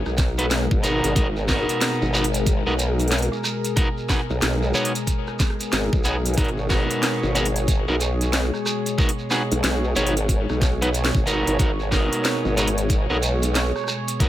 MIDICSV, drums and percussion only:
0, 0, Header, 1, 3, 480
1, 0, Start_track
1, 0, Key_signature, 5, "minor"
1, 0, Tempo, 652174
1, 854, Time_signature, 4, 2, 24, 8
1, 10516, End_track
2, 0, Start_track
2, 0, Title_t, "Shekere"
2, 42, Note_on_c, 9, 82, 24
2, 115, Note_off_c, 9, 82, 0
2, 132, Note_on_c, 9, 82, 106
2, 206, Note_off_c, 9, 82, 0
2, 279, Note_on_c, 9, 82, 43
2, 352, Note_off_c, 9, 82, 0
2, 371, Note_on_c, 9, 82, 51
2, 444, Note_off_c, 9, 82, 0
2, 524, Note_on_c, 9, 82, 27
2, 598, Note_off_c, 9, 82, 0
2, 615, Note_on_c, 9, 82, 95
2, 689, Note_off_c, 9, 82, 0
2, 766, Note_on_c, 9, 82, 39
2, 840, Note_off_c, 9, 82, 0
2, 855, Note_on_c, 9, 82, 54
2, 928, Note_off_c, 9, 82, 0
2, 1005, Note_on_c, 9, 82, 31
2, 1078, Note_off_c, 9, 82, 0
2, 1092, Note_on_c, 9, 82, 98
2, 1166, Note_off_c, 9, 82, 0
2, 1245, Note_on_c, 9, 82, 46
2, 1319, Note_off_c, 9, 82, 0
2, 1335, Note_on_c, 9, 82, 57
2, 1409, Note_off_c, 9, 82, 0
2, 1486, Note_on_c, 9, 82, 28
2, 1559, Note_off_c, 9, 82, 0
2, 1575, Note_on_c, 9, 82, 95
2, 1649, Note_off_c, 9, 82, 0
2, 1720, Note_on_c, 9, 82, 45
2, 1793, Note_off_c, 9, 82, 0
2, 1813, Note_on_c, 9, 82, 58
2, 1887, Note_off_c, 9, 82, 0
2, 1965, Note_on_c, 9, 82, 26
2, 2038, Note_off_c, 9, 82, 0
2, 2053, Note_on_c, 9, 82, 85
2, 2127, Note_off_c, 9, 82, 0
2, 2199, Note_on_c, 9, 82, 40
2, 2273, Note_off_c, 9, 82, 0
2, 2291, Note_on_c, 9, 82, 51
2, 2364, Note_off_c, 9, 82, 0
2, 2450, Note_on_c, 9, 82, 27
2, 2524, Note_off_c, 9, 82, 0
2, 2535, Note_on_c, 9, 82, 96
2, 2608, Note_off_c, 9, 82, 0
2, 2682, Note_on_c, 9, 82, 45
2, 2756, Note_off_c, 9, 82, 0
2, 2772, Note_on_c, 9, 82, 55
2, 2846, Note_off_c, 9, 82, 0
2, 2926, Note_on_c, 9, 82, 27
2, 3000, Note_off_c, 9, 82, 0
2, 3013, Note_on_c, 9, 82, 88
2, 3086, Note_off_c, 9, 82, 0
2, 3164, Note_on_c, 9, 82, 38
2, 3237, Note_off_c, 9, 82, 0
2, 3249, Note_on_c, 9, 82, 52
2, 3323, Note_off_c, 9, 82, 0
2, 3403, Note_on_c, 9, 82, 27
2, 3476, Note_off_c, 9, 82, 0
2, 3490, Note_on_c, 9, 82, 97
2, 3564, Note_off_c, 9, 82, 0
2, 3644, Note_on_c, 9, 82, 46
2, 3718, Note_off_c, 9, 82, 0
2, 3734, Note_on_c, 9, 82, 54
2, 3807, Note_off_c, 9, 82, 0
2, 3880, Note_on_c, 9, 82, 24
2, 3953, Note_off_c, 9, 82, 0
2, 3970, Note_on_c, 9, 82, 100
2, 4044, Note_off_c, 9, 82, 0
2, 4122, Note_on_c, 9, 82, 46
2, 4196, Note_off_c, 9, 82, 0
2, 4213, Note_on_c, 9, 82, 52
2, 4286, Note_off_c, 9, 82, 0
2, 4364, Note_on_c, 9, 82, 26
2, 4438, Note_off_c, 9, 82, 0
2, 4445, Note_on_c, 9, 82, 98
2, 4519, Note_off_c, 9, 82, 0
2, 4605, Note_on_c, 9, 82, 41
2, 4679, Note_off_c, 9, 82, 0
2, 4697, Note_on_c, 9, 82, 49
2, 4771, Note_off_c, 9, 82, 0
2, 4843, Note_on_c, 9, 82, 29
2, 4917, Note_off_c, 9, 82, 0
2, 4930, Note_on_c, 9, 82, 87
2, 5004, Note_off_c, 9, 82, 0
2, 5081, Note_on_c, 9, 82, 42
2, 5155, Note_off_c, 9, 82, 0
2, 5177, Note_on_c, 9, 82, 53
2, 5251, Note_off_c, 9, 82, 0
2, 5322, Note_on_c, 9, 82, 28
2, 5396, Note_off_c, 9, 82, 0
2, 5416, Note_on_c, 9, 82, 85
2, 5489, Note_off_c, 9, 82, 0
2, 5569, Note_on_c, 9, 82, 37
2, 5643, Note_off_c, 9, 82, 0
2, 5654, Note_on_c, 9, 82, 57
2, 5727, Note_off_c, 9, 82, 0
2, 5798, Note_on_c, 9, 82, 26
2, 5872, Note_off_c, 9, 82, 0
2, 5894, Note_on_c, 9, 82, 87
2, 5967, Note_off_c, 9, 82, 0
2, 6051, Note_on_c, 9, 82, 42
2, 6125, Note_off_c, 9, 82, 0
2, 6136, Note_on_c, 9, 82, 54
2, 6210, Note_off_c, 9, 82, 0
2, 6288, Note_on_c, 9, 82, 28
2, 6361, Note_off_c, 9, 82, 0
2, 6376, Note_on_c, 9, 82, 103
2, 6449, Note_off_c, 9, 82, 0
2, 6523, Note_on_c, 9, 82, 38
2, 6597, Note_off_c, 9, 82, 0
2, 6616, Note_on_c, 9, 82, 52
2, 6690, Note_off_c, 9, 82, 0
2, 6761, Note_on_c, 9, 82, 28
2, 6835, Note_off_c, 9, 82, 0
2, 6849, Note_on_c, 9, 82, 88
2, 6922, Note_off_c, 9, 82, 0
2, 7001, Note_on_c, 9, 82, 40
2, 7075, Note_off_c, 9, 82, 0
2, 7096, Note_on_c, 9, 82, 52
2, 7170, Note_off_c, 9, 82, 0
2, 7241, Note_on_c, 9, 82, 28
2, 7315, Note_off_c, 9, 82, 0
2, 7330, Note_on_c, 9, 82, 86
2, 7404, Note_off_c, 9, 82, 0
2, 7481, Note_on_c, 9, 82, 39
2, 7555, Note_off_c, 9, 82, 0
2, 7574, Note_on_c, 9, 82, 52
2, 7648, Note_off_c, 9, 82, 0
2, 7722, Note_on_c, 9, 82, 25
2, 7796, Note_off_c, 9, 82, 0
2, 7818, Note_on_c, 9, 82, 86
2, 7892, Note_off_c, 9, 82, 0
2, 7963, Note_on_c, 9, 82, 38
2, 8037, Note_off_c, 9, 82, 0
2, 8051, Note_on_c, 9, 82, 49
2, 8125, Note_off_c, 9, 82, 0
2, 8204, Note_on_c, 9, 82, 29
2, 8278, Note_off_c, 9, 82, 0
2, 8295, Note_on_c, 9, 82, 84
2, 8368, Note_off_c, 9, 82, 0
2, 8440, Note_on_c, 9, 82, 35
2, 8513, Note_off_c, 9, 82, 0
2, 8533, Note_on_c, 9, 82, 47
2, 8606, Note_off_c, 9, 82, 0
2, 8683, Note_on_c, 9, 82, 29
2, 8757, Note_off_c, 9, 82, 0
2, 8774, Note_on_c, 9, 82, 85
2, 8847, Note_off_c, 9, 82, 0
2, 8926, Note_on_c, 9, 82, 38
2, 8999, Note_off_c, 9, 82, 0
2, 9010, Note_on_c, 9, 82, 49
2, 9084, Note_off_c, 9, 82, 0
2, 9163, Note_on_c, 9, 82, 24
2, 9237, Note_off_c, 9, 82, 0
2, 9256, Note_on_c, 9, 82, 91
2, 9330, Note_off_c, 9, 82, 0
2, 9404, Note_on_c, 9, 82, 36
2, 9478, Note_off_c, 9, 82, 0
2, 9494, Note_on_c, 9, 82, 53
2, 9567, Note_off_c, 9, 82, 0
2, 9646, Note_on_c, 9, 82, 24
2, 9719, Note_off_c, 9, 82, 0
2, 9736, Note_on_c, 9, 82, 96
2, 9809, Note_off_c, 9, 82, 0
2, 9881, Note_on_c, 9, 82, 41
2, 9955, Note_off_c, 9, 82, 0
2, 9972, Note_on_c, 9, 82, 52
2, 10045, Note_off_c, 9, 82, 0
2, 10128, Note_on_c, 9, 82, 25
2, 10201, Note_off_c, 9, 82, 0
2, 10216, Note_on_c, 9, 82, 86
2, 10289, Note_off_c, 9, 82, 0
2, 10363, Note_on_c, 9, 82, 36
2, 10436, Note_off_c, 9, 82, 0
2, 10461, Note_on_c, 9, 82, 54
2, 10516, Note_off_c, 9, 82, 0
2, 10516, End_track
3, 0, Start_track
3, 0, Title_t, "Drums"
3, 46, Note_on_c, 9, 37, 38
3, 119, Note_off_c, 9, 37, 0
3, 134, Note_on_c, 9, 36, 117
3, 135, Note_on_c, 9, 38, 64
3, 135, Note_on_c, 9, 42, 38
3, 207, Note_off_c, 9, 36, 0
3, 209, Note_off_c, 9, 38, 0
3, 209, Note_off_c, 9, 42, 0
3, 285, Note_on_c, 9, 42, 55
3, 359, Note_off_c, 9, 42, 0
3, 375, Note_on_c, 9, 38, 118
3, 375, Note_on_c, 9, 42, 64
3, 449, Note_off_c, 9, 38, 0
3, 449, Note_off_c, 9, 42, 0
3, 524, Note_on_c, 9, 36, 112
3, 598, Note_off_c, 9, 36, 0
3, 615, Note_on_c, 9, 42, 37
3, 688, Note_off_c, 9, 42, 0
3, 765, Note_on_c, 9, 42, 59
3, 839, Note_off_c, 9, 42, 0
3, 854, Note_on_c, 9, 36, 127
3, 855, Note_on_c, 9, 42, 69
3, 928, Note_off_c, 9, 36, 0
3, 929, Note_off_c, 9, 42, 0
3, 1094, Note_on_c, 9, 36, 66
3, 1095, Note_on_c, 9, 38, 65
3, 1168, Note_off_c, 9, 36, 0
3, 1168, Note_off_c, 9, 38, 0
3, 1245, Note_on_c, 9, 42, 55
3, 1319, Note_off_c, 9, 42, 0
3, 1335, Note_on_c, 9, 38, 127
3, 1335, Note_on_c, 9, 42, 72
3, 1408, Note_off_c, 9, 38, 0
3, 1408, Note_off_c, 9, 42, 0
3, 1651, Note_on_c, 9, 42, 68
3, 1725, Note_off_c, 9, 42, 0
3, 1725, Note_on_c, 9, 42, 56
3, 1799, Note_off_c, 9, 42, 0
3, 1814, Note_on_c, 9, 36, 106
3, 1815, Note_on_c, 9, 42, 66
3, 1888, Note_off_c, 9, 36, 0
3, 1889, Note_off_c, 9, 42, 0
3, 2054, Note_on_c, 9, 42, 38
3, 2128, Note_off_c, 9, 42, 0
3, 2204, Note_on_c, 9, 42, 25
3, 2213, Note_off_c, 9, 42, 0
3, 2213, Note_on_c, 9, 42, 29
3, 2264, Note_off_c, 9, 42, 0
3, 2264, Note_on_c, 9, 42, 34
3, 2293, Note_off_c, 9, 42, 0
3, 2293, Note_on_c, 9, 38, 116
3, 2293, Note_on_c, 9, 42, 64
3, 2343, Note_off_c, 9, 42, 0
3, 2343, Note_on_c, 9, 42, 42
3, 2366, Note_off_c, 9, 38, 0
3, 2373, Note_off_c, 9, 42, 0
3, 2373, Note_on_c, 9, 42, 48
3, 2443, Note_on_c, 9, 37, 39
3, 2446, Note_off_c, 9, 42, 0
3, 2517, Note_off_c, 9, 37, 0
3, 2532, Note_on_c, 9, 37, 50
3, 2606, Note_off_c, 9, 37, 0
3, 2683, Note_on_c, 9, 42, 58
3, 2757, Note_off_c, 9, 42, 0
3, 2773, Note_on_c, 9, 42, 63
3, 2774, Note_on_c, 9, 36, 125
3, 2846, Note_off_c, 9, 42, 0
3, 2848, Note_off_c, 9, 36, 0
3, 3013, Note_on_c, 9, 38, 63
3, 3014, Note_on_c, 9, 36, 63
3, 3086, Note_off_c, 9, 38, 0
3, 3087, Note_off_c, 9, 36, 0
3, 3254, Note_on_c, 9, 38, 127
3, 3254, Note_on_c, 9, 42, 69
3, 3328, Note_off_c, 9, 38, 0
3, 3328, Note_off_c, 9, 42, 0
3, 3570, Note_on_c, 9, 42, 65
3, 3643, Note_off_c, 9, 42, 0
3, 3646, Note_on_c, 9, 42, 52
3, 3719, Note_off_c, 9, 42, 0
3, 3733, Note_on_c, 9, 36, 64
3, 3735, Note_on_c, 9, 42, 67
3, 3807, Note_off_c, 9, 36, 0
3, 3808, Note_off_c, 9, 42, 0
3, 3885, Note_on_c, 9, 37, 36
3, 3958, Note_off_c, 9, 37, 0
3, 3973, Note_on_c, 9, 36, 110
3, 3974, Note_on_c, 9, 38, 65
3, 3974, Note_on_c, 9, 42, 37
3, 4047, Note_off_c, 9, 36, 0
3, 4048, Note_off_c, 9, 38, 0
3, 4048, Note_off_c, 9, 42, 0
3, 4049, Note_on_c, 9, 37, 50
3, 4123, Note_off_c, 9, 37, 0
3, 4126, Note_on_c, 9, 42, 53
3, 4199, Note_off_c, 9, 42, 0
3, 4214, Note_on_c, 9, 38, 121
3, 4214, Note_on_c, 9, 42, 61
3, 4288, Note_off_c, 9, 38, 0
3, 4288, Note_off_c, 9, 42, 0
3, 4363, Note_on_c, 9, 36, 113
3, 4437, Note_off_c, 9, 36, 0
3, 4454, Note_on_c, 9, 42, 35
3, 4527, Note_off_c, 9, 42, 0
3, 4604, Note_on_c, 9, 42, 54
3, 4613, Note_off_c, 9, 42, 0
3, 4613, Note_on_c, 9, 42, 45
3, 4663, Note_off_c, 9, 42, 0
3, 4663, Note_on_c, 9, 42, 36
3, 4693, Note_off_c, 9, 42, 0
3, 4693, Note_on_c, 9, 36, 122
3, 4693, Note_on_c, 9, 42, 66
3, 4743, Note_off_c, 9, 42, 0
3, 4743, Note_on_c, 9, 42, 22
3, 4766, Note_off_c, 9, 36, 0
3, 4772, Note_off_c, 9, 42, 0
3, 4772, Note_on_c, 9, 42, 18
3, 4846, Note_off_c, 9, 42, 0
3, 4932, Note_on_c, 9, 38, 62
3, 4933, Note_on_c, 9, 36, 63
3, 5006, Note_off_c, 9, 36, 0
3, 5006, Note_off_c, 9, 38, 0
3, 5083, Note_on_c, 9, 42, 52
3, 5156, Note_off_c, 9, 42, 0
3, 5172, Note_on_c, 9, 38, 127
3, 5172, Note_on_c, 9, 42, 64
3, 5246, Note_off_c, 9, 38, 0
3, 5246, Note_off_c, 9, 42, 0
3, 5412, Note_on_c, 9, 42, 49
3, 5486, Note_off_c, 9, 42, 0
3, 5487, Note_on_c, 9, 42, 63
3, 5560, Note_off_c, 9, 42, 0
3, 5562, Note_on_c, 9, 42, 51
3, 5636, Note_off_c, 9, 42, 0
3, 5652, Note_on_c, 9, 42, 65
3, 5653, Note_on_c, 9, 36, 100
3, 5726, Note_off_c, 9, 36, 0
3, 5726, Note_off_c, 9, 42, 0
3, 5892, Note_on_c, 9, 42, 36
3, 5965, Note_off_c, 9, 42, 0
3, 6042, Note_on_c, 9, 42, 51
3, 6116, Note_off_c, 9, 42, 0
3, 6132, Note_on_c, 9, 38, 122
3, 6132, Note_on_c, 9, 42, 60
3, 6205, Note_off_c, 9, 38, 0
3, 6205, Note_off_c, 9, 42, 0
3, 6283, Note_on_c, 9, 37, 39
3, 6357, Note_off_c, 9, 37, 0
3, 6372, Note_on_c, 9, 37, 49
3, 6446, Note_off_c, 9, 37, 0
3, 6524, Note_on_c, 9, 42, 55
3, 6597, Note_off_c, 9, 42, 0
3, 6613, Note_on_c, 9, 36, 115
3, 6686, Note_off_c, 9, 36, 0
3, 6689, Note_on_c, 9, 42, 67
3, 6763, Note_off_c, 9, 42, 0
3, 6853, Note_on_c, 9, 38, 60
3, 6926, Note_off_c, 9, 38, 0
3, 7004, Note_on_c, 9, 42, 50
3, 7077, Note_off_c, 9, 42, 0
3, 7093, Note_on_c, 9, 38, 125
3, 7093, Note_on_c, 9, 42, 64
3, 7167, Note_off_c, 9, 38, 0
3, 7167, Note_off_c, 9, 42, 0
3, 7334, Note_on_c, 9, 42, 49
3, 7408, Note_off_c, 9, 42, 0
3, 7408, Note_on_c, 9, 42, 61
3, 7482, Note_off_c, 9, 42, 0
3, 7484, Note_on_c, 9, 42, 51
3, 7558, Note_off_c, 9, 42, 0
3, 7573, Note_on_c, 9, 36, 61
3, 7574, Note_on_c, 9, 42, 60
3, 7646, Note_off_c, 9, 36, 0
3, 7648, Note_off_c, 9, 42, 0
3, 7725, Note_on_c, 9, 37, 37
3, 7799, Note_off_c, 9, 37, 0
3, 7813, Note_on_c, 9, 36, 104
3, 7815, Note_on_c, 9, 38, 57
3, 7815, Note_on_c, 9, 42, 35
3, 7887, Note_off_c, 9, 36, 0
3, 7888, Note_off_c, 9, 38, 0
3, 7888, Note_off_c, 9, 42, 0
3, 7966, Note_on_c, 9, 37, 52
3, 7966, Note_on_c, 9, 42, 52
3, 8039, Note_off_c, 9, 37, 0
3, 8039, Note_off_c, 9, 42, 0
3, 8055, Note_on_c, 9, 42, 63
3, 8129, Note_off_c, 9, 42, 0
3, 8130, Note_on_c, 9, 38, 112
3, 8203, Note_off_c, 9, 38, 0
3, 8203, Note_on_c, 9, 36, 110
3, 8277, Note_off_c, 9, 36, 0
3, 8295, Note_on_c, 9, 42, 36
3, 8369, Note_off_c, 9, 42, 0
3, 8445, Note_on_c, 9, 42, 52
3, 8518, Note_off_c, 9, 42, 0
3, 8533, Note_on_c, 9, 36, 115
3, 8535, Note_on_c, 9, 42, 65
3, 8607, Note_off_c, 9, 36, 0
3, 8608, Note_off_c, 9, 42, 0
3, 8773, Note_on_c, 9, 36, 58
3, 8775, Note_on_c, 9, 38, 57
3, 8847, Note_off_c, 9, 36, 0
3, 8849, Note_off_c, 9, 38, 0
3, 8924, Note_on_c, 9, 42, 51
3, 8998, Note_off_c, 9, 42, 0
3, 9014, Note_on_c, 9, 38, 118
3, 9014, Note_on_c, 9, 42, 71
3, 9088, Note_off_c, 9, 38, 0
3, 9088, Note_off_c, 9, 42, 0
3, 9255, Note_on_c, 9, 42, 48
3, 9328, Note_off_c, 9, 42, 0
3, 9329, Note_on_c, 9, 42, 65
3, 9403, Note_off_c, 9, 42, 0
3, 9405, Note_on_c, 9, 42, 51
3, 9478, Note_off_c, 9, 42, 0
3, 9493, Note_on_c, 9, 36, 97
3, 9494, Note_on_c, 9, 42, 64
3, 9567, Note_off_c, 9, 36, 0
3, 9568, Note_off_c, 9, 42, 0
3, 9735, Note_on_c, 9, 42, 37
3, 9808, Note_off_c, 9, 42, 0
3, 9885, Note_on_c, 9, 42, 52
3, 9958, Note_off_c, 9, 42, 0
3, 9975, Note_on_c, 9, 38, 109
3, 9975, Note_on_c, 9, 42, 62
3, 10048, Note_off_c, 9, 38, 0
3, 10048, Note_off_c, 9, 42, 0
3, 10125, Note_on_c, 9, 37, 41
3, 10185, Note_off_c, 9, 37, 0
3, 10185, Note_on_c, 9, 37, 32
3, 10214, Note_off_c, 9, 37, 0
3, 10214, Note_on_c, 9, 37, 52
3, 10264, Note_off_c, 9, 37, 0
3, 10264, Note_on_c, 9, 37, 26
3, 10338, Note_off_c, 9, 37, 0
3, 10365, Note_on_c, 9, 42, 59
3, 10439, Note_off_c, 9, 42, 0
3, 10453, Note_on_c, 9, 36, 114
3, 10453, Note_on_c, 9, 42, 69
3, 10516, Note_off_c, 9, 36, 0
3, 10516, Note_off_c, 9, 42, 0
3, 10516, End_track
0, 0, End_of_file